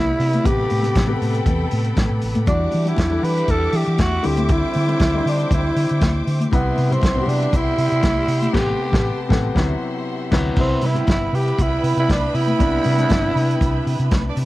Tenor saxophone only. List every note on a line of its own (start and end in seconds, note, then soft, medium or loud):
0.00 0.47 E4 loud
0.46 1.22 G4 loud
2.48 2.89 D4 medium
2.88 3.26 E4 medium
3.24 3.52 B4 medium
3.51 3.78 A4 loud
3.76 4.02 G4 medium
4.01 4.28 F#4 medium
4.26 4.54 G4 medium
4.52 5.30 E4 medium
5.28 5.52 D4 medium
5.54 6.24 E4 medium
6.54 6.94 B3 medium
6.93 7.30 C4 medium
7.28 7.57 D4 medium
7.56 8.53 E4 loud
8.54 9.26 G4 loud
10.60 10.87 C4 medium
10.86 11.10 E4 medium
11.11 11.37 E4 medium
11.35 11.64 G4 medium
11.62 11.99 E4 medium
11.99 12.13 E4 medium
12.12 12.36 D4 medium
12.35 14.37 E4 loud